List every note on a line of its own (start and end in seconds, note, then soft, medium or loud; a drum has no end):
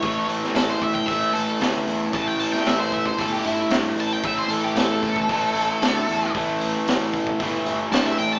0.00 0.23 A1 medium
0.00 1.07 A2 medium
0.00 1.08 E3 medium
0.00 0.28 C#5 medium
0.00 kick loud
0.00 open hi-hat medium
0.05 1.10 A3 loud
0.28 0.48 A1 medium
0.28 open hi-hat medium
0.44 snare soft
0.54 0.75 A1 medium
0.54 0.69 A4 medium
0.54 snare loud
0.54 open hi-hat medium
0.69 0.82 C5 medium
0.82 1.02 A1 medium
0.82 0.94 E5 medium
0.82 kick medium
0.82 open hi-hat medium
0.94 1.06 G5 medium
0.94 kick medium
1.07 1.28 A1 medium
1.07 2.12 A2 medium
1.07 2.13 E3 medium
1.07 2.15 A3 medium
1.07 1.33 E5 medium
1.07 kick medium
1.07 open hi-hat medium
1.33 1.54 A1 medium
1.33 1.59 A4 medium
1.33 open hi-hat medium
1.61 1.81 D2 medium
1.61 snare loud
1.61 open hi-hat medium
1.87 2.07 E2 medium
1.87 open hi-hat soft
2.12 2.53 A1 medium
2.12 3.18 A2 medium
2.12 3.19 E3 medium
2.12 3.21 A3 loud
2.12 2.27 A5 loud
2.12 kick loud
2.12 open hi-hat medium
2.27 2.39 G5 medium
2.39 2.52 A5 medium
2.39 open hi-hat medium
2.53 2.68 G5 medium
2.53 snare soft
2.66 3.06 A1 medium
2.66 2.80 E5 loud
2.66 snare medium
2.66 open hi-hat medium
2.80 2.92 C5 medium
2.92 3.06 E5 medium
2.92 kick medium
2.92 open hi-hat medium
3.05 3.18 C5 medium
3.05 kick medium
3.18 3.38 G1 medium
3.18 4.23 A2 medium
3.18 4.25 E3 medium
3.18 4.26 A3 medium
3.18 3.33 A4 medium
3.18 kick medium
3.18 open hi-hat medium
3.33 3.45 G4 medium
3.44 3.64 G1 medium
3.44 3.70 E4 medium
3.44 open hi-hat medium
3.70 3.90 G2 medium
3.70 snare loud
3.70 open hi-hat medium
3.95 4.16 A1 medium
3.95 open hi-hat medium
4.00 4.13 A5 loud
4.13 4.24 G5 medium
4.23 4.44 A1 medium
4.23 5.29 A2 medium
4.23 5.30 E3 loud
4.23 5.31 A3 loud
4.23 4.37 E5 medium
4.23 kick loud
4.23 open hi-hat medium
4.39 4.51 C5 medium
4.48 4.69 A1 medium
4.48 4.64 A4 medium
4.48 open hi-hat medium
4.64 4.76 G4 medium
4.75 4.95 A1 medium
4.75 6.31 A4 loud
4.75 snare loud
4.75 open hi-hat medium
5.03 5.23 A1 medium
5.03 kick medium
5.03 open hi-hat soft
5.16 kick medium
5.29 5.49 A1 loud
5.29 6.34 A2 medium
5.29 6.35 E3 medium
5.29 6.36 A3 medium
5.29 kick medium
5.29 open hi-hat medium
5.54 5.75 A1 medium
5.54 open hi-hat medium
5.82 6.02 D2 medium
5.82 snare loud
5.82 open hi-hat medium
6.09 6.29 E2 medium
6.09 open hi-hat medium
6.34 6.75 A1 medium
6.34 7.39 A2 medium
6.34 7.42 E3 medium
6.34 7.43 A3 loud
6.34 kick loud
6.34 open hi-hat medium
6.61 open hi-hat medium
6.86 7.27 A1 medium
6.86 snare loud
6.86 open hi-hat medium
7.14 kick medium
7.14 open hi-hat medium
7.27 kick medium
7.40 7.60 G1 loud
7.40 8.39 A2 medium
7.40 8.39 E3 medium
7.40 8.39 A3 medium
7.40 kick medium
7.40 open hi-hat medium
7.66 7.86 G1 medium
7.66 open hi-hat medium
7.92 8.12 G2 loud
7.92 8.05 A5 loud
7.92 snare loud
7.92 open hi-hat medium
8.05 8.18 E5 medium
8.18 8.39 A1 medium
8.18 8.32 G5 medium
8.18 open hi-hat medium
8.32 8.39 A5 loud